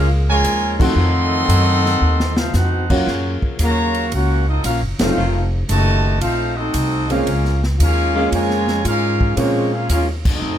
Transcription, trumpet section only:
0.29 0.77 F4 loud
0.29 0.77 A#4 loud
0.29 0.77 C#5 loud
0.29 0.77 G#5 loud
0.83 2.35 A4 loud
0.83 2.35 D#5 loud
0.83 2.35 F#5 loud
0.83 2.35 C6 loud
2.38 2.54 D#4 medium
2.38 2.54 A4 medium
2.38 2.54 C5 medium
2.38 2.54 F5 loud
2.55 2.90 D#4 medium
2.55 2.90 A4 medium
2.55 2.91 C5 medium
2.55 2.90 F#5 medium
2.91 3.40 C#4 medium
2.91 3.40 F4 medium
2.91 3.40 A#4 medium
2.91 3.40 F#5 medium
3.63 4.10 F#4 loud
3.63 4.11 C#5 loud
3.63 4.11 F5 loud
3.63 4.10 A#5 loud
4.15 4.49 C#4 medium
4.15 4.47 F4 medium
4.15 4.49 A#4 medium
4.15 4.49 F#5 loud
4.49 4.64 C4 medium
4.49 4.64 F4 medium
4.49 4.64 A4 medium
4.49 4.64 D#5 medium
4.65 4.81 C#4 medium
4.65 4.82 F#4 medium
4.65 4.81 A#4 medium
4.65 4.82 F5 loud
5.00 5.49 D#4 medium
5.00 5.49 A4 medium
5.00 5.49 C5 medium
5.00 5.49 F5 medium
5.70 6.19 F#4 loud
5.70 6.19 C5 loud
5.70 6.19 D#5 loud
5.70 6.19 A5 loud
6.21 6.55 D#4 medium
6.21 6.55 A4 medium
6.21 6.55 C5 medium
6.21 6.55 F5 loud
6.56 7.10 C4 medium
6.56 7.10 F#4 medium
6.56 7.10 A4 medium
6.56 7.10 D#5 loud
7.11 7.63 C#4 medium
7.11 7.63 G#4 medium
7.11 7.63 A#4 medium
7.11 7.64 F5 loud
7.81 8.30 C#4 loud
7.81 8.29 G#4 medium
7.81 8.29 A#4 loud
7.81 8.30 F5 loud
8.34 8.86 F4 loud
8.34 8.86 A#4 medium
8.34 8.86 C#5 loud
8.34 8.86 G#5 loud
8.86 9.34 C#4 medium
8.86 9.35 G#4 medium
8.86 9.35 A#4 medium
8.86 9.35 F5 loud
9.39 9.74 A#3 medium
9.39 9.74 F4 medium
9.39 9.73 G#4 medium
9.39 9.74 C#5 medium
9.74 9.90 C#4 medium
9.74 9.90 G#4 medium
9.74 9.90 A#4 medium
9.74 9.90 F5 medium
9.91 10.07 C#4 medium
9.91 10.07 G#4 medium
9.91 10.07 A#4 medium
9.91 10.07 F5 medium
10.27 10.58 C4 medium
10.27 10.58 F#4 medium
10.27 10.58 A4 medium
10.27 10.58 D#5 medium

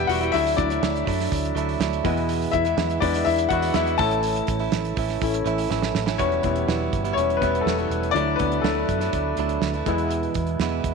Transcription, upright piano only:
0.00 0.29 G3 medium
0.00 0.30 B3 medium
0.00 0.36 D4 medium
0.00 0.34 E4 medium
0.00 0.36 G4 medium
0.00 0.36 D5 medium
0.00 0.32 E5 loud
0.00 0.35 G5 loud
0.07 0.15 F#4 medium
0.07 0.13 F#5 medium
0.32 0.56 E4 medium
0.32 0.58 E5 loud
0.56 1.27 F#3 medium
0.56 1.52 D4 medium
0.56 1.28 E4 medium
0.56 1.51 D5 medium
2.04 2.74 G#3 medium
2.04 2.74 B3 soft
2.04 2.52 E4 medium
2.52 2.99 E4 medium
2.52 2.98 E5 medium
3.00 3.24 G#3 medium
3.00 3.24 B3 soft
3.00 3.25 D4 medium
3.00 3.24 E4 medium
3.00 3.27 D5 medium
3.25 3.50 E4 medium
3.25 3.51 E5 loud
3.49 3.74 F#4 medium
3.49 3.73 F#5 loud
3.73 3.98 E4 medium
3.73 4.00 E5 medium
3.98 4.32 A3 medium
3.98 4.32 C#4 soft
3.98 4.32 E4 medium
3.98 5.67 A4 medium
3.98 5.66 A5 loud
5.22 5.44 A3 soft
5.22 5.44 C#4 soft
5.22 5.45 E4 medium
6.18 7.14 C#4 medium
6.18 7.12 C#5 medium
6.43 8.11 G3 soft
6.43 7.39 B3 medium
6.43 8.11 E4 medium
7.13 7.23 C#4 medium
7.13 7.19 C#5 medium
7.37 7.65 B4 medium
7.41 7.64 B3 medium
7.61 8.14 A4 medium
7.66 8.12 A3 medium
8.11 8.84 F#3 medium
8.11 8.38 D4 medium
8.11 8.85 E4 medium
8.11 8.39 D5 loud
8.36 8.62 B3 medium
8.36 8.61 B4 medium
8.61 9.10 A3 medium
8.61 9.08 A4 medium
9.86 10.94 G#3 soft
9.86 10.94 B3 medium
9.86 10.94 E4 medium

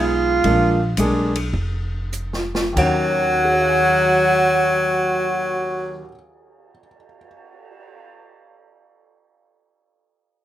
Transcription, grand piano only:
0.00 0.41 G#3 medium
0.00 0.42 B3 medium
0.00 0.42 D#4 soft
0.00 0.42 G#4 medium
0.45 0.77 G#3 medium
0.45 0.77 A#3 medium
0.45 0.78 D4 medium
0.45 0.78 F4 medium
0.98 1.32 G#3 medium
0.98 1.32 A#3 medium
0.98 1.33 D4 medium
0.98 1.33 G#4 medium
2.73 6.02 D#2 medium
2.73 6.05 D#3 medium
2.79 6.08 F#3 soft
2.79 6.11 C#4 medium
2.85 6.14 F#4 medium
3.45 6.70 G#4 soft
3.52 6.77 C#5 soft
3.61 6.86 F5 soft
3.69 6.95 G#5 soft
3.79 7.04 C#6 soft
3.90 7.15 F6 soft
4.02 7.27 G#6 soft

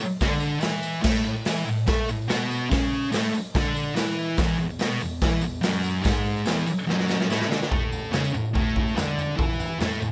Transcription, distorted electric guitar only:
0.01 muted distorted electric guitar stroke medium
0.22 0.61 D3 medium
0.22 0.63 D4 loud
0.61 1.02 E3 medium
0.61 1.04 E4 loud
1.03 1.24 A2 medium
1.03 1.24 A3 loud
1.25 1.42 A2 medium
1.47 1.66 E3 medium
1.47 1.67 E4 medium
1.66 1.83 A2 medium
1.87 2.08 A3 medium
1.87 2.08 A4 medium
2.09 2.26 A2 medium
2.28 2.69 B2 medium
2.28 2.70 B3 loud
2.70 3.10 C#3 medium
2.70 3.12 C#4 loud
3.10 3.32 A2 medium
3.10 3.33 A3 loud
3.33 muted distorted electric guitar stroke medium
3.55 3.95 D3 medium
3.55 3.96 D4 medium
3.95 4.37 E3 loud
3.95 4.37 E4 loud
4.37 4.57 E2 medium
4.37 4.58 E3 loud
4.58 4.75 E2 medium
4.79 5.00 B2 medium
4.79 5.00 B3 medium
5.01 5.17 E2 medium
5.22 5.42 E3 medium
5.22 5.42 E4 medium
5.42 5.59 E2 medium
5.61 6.04 F#2 loud
5.61 6.05 F#3 loud
6.04 6.45 G#2 medium
6.04 6.46 G#3 medium
6.46 6.66 E2 medium
6.46 6.67 E3 medium
6.67 muted distorted electric guitar stroke medium
6.87 7.28 F#2 medium
6.87 7.29 F#3 loud
7.29 7.48 A2 medium
7.29 7.49 A3 medium
7.48 7.69 D3 medium
7.48 7.70 D4 loud
7.69 8.11 A2 medium
7.69 8.12 A3 loud
8.12 8.33 C#3 medium
8.12 8.33 C#4 medium
8.34 8.51 A2 medium
8.54 8.96 A2 medium
8.54 8.96 A3 medium
8.96 9.36 D3 medium
8.96 9.37 D4 loud
9.36 9.79 E3 medium
9.36 9.79 E4 loud
9.79 10.00 A2 medium
9.79 10.01 A3 medium
10.01 10.12 A2 medium

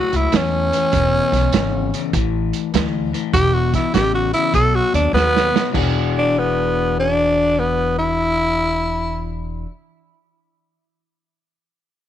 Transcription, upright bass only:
0.13 0.25 C#2 medium
0.33 0.70 E2 medium
0.93 1.18 E1 medium
1.32 1.45 B1 medium
1.52 1.89 G#1 loud
2.13 2.50 A1 loud
2.74 3.11 D2 medium
3.33 3.71 E1 medium
3.94 4.31 A1 medium
4.54 4.79 B1 loud
4.94 5.06 D#2 medium
5.13 5.51 D#2 medium
5.75 9.63 E1 medium

